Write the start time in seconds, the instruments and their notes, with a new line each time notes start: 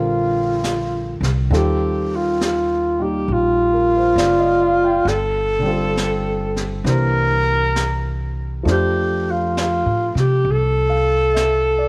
Already playing: upright bass A#1, grand piano D3 G3 C4 F4 A#4, alto saxophone F4
0.64 snare, hi-hat pedal
1.21 upright bass C2, snare
1.50 upright bass D#2, grand piano D#3 G3 C4 F4 A4, brush sweep, snare
1.57 alto saxophone G4
2.16 alto saxophone F4
2.41 alto saxophone F4, snare, hi-hat pedal
2.99 grand piano G3 A#3 D#4 G4, alto saxophone G4
3.28 upright bass A#1, brush sweep
3.33 alto saxophone F4
3.73 grand piano A#4
3.97 grand piano C5
4.16 upright bass F#1, grand piano D5, snare, hi-hat pedal
4.39 grand piano D#5
4.62 grand piano F5
4.84 grand piano G5
5.05 upright bass G1, alto saxophone A4, brush sweep, snare
5.59 grand piano D3 G3
5.65 grand piano C4 F4
5.71 grand piano A4
5.97 snare, hi-hat pedal
6.56 snare
6.84 upright bass C2, grand piano E3 A#3 D4 G4 C5, brush sweep, snare
6.89 alto saxophone A#4
7.76 snare, hi-hat pedal
8.63 upright bass F2, grand piano F3 A3 D4 G4, brush sweep, snare
8.68 alto saxophone G4, grand piano C5
9.31 alto saxophone F4
9.57 alto saxophone F4, snare, hi-hat pedal
9.86 upright bass A2
10.15 upright bass C3, snare
10.20 alto saxophone G4
10.45 upright bass C2, brush sweep
10.51 alto saxophone A4
10.90 grand piano F5
11.34 grand piano E5, snare, hi-hat pedal
11.78 grand piano D5